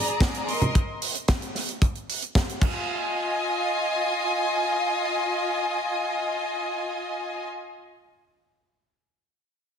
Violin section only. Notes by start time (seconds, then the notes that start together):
Already playing: G#4 D5 A#5
0.48 A#4 D#5 C6
2.62 F4 D#5 G#5